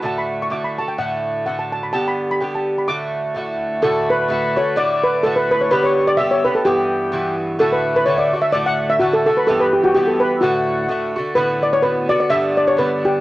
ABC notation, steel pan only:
X:1
M:2/4
L:1/16
Q:"Swing" 1/4=127
K:D
V:1 name="Steel pan"
a b2 c' d' b a g | f4 f a a b | a b2 b g a2 b | d'6 z2 |
A2 B4 c2 | d2 B2 A B B c | B c2 d e c B A | G6 z2 |
A B2 B c d2 e | d f2 e F A A B | A B G F G A B2 | F6 z2 |
B2 d c B2 d d | e2 d c B2 G2 |]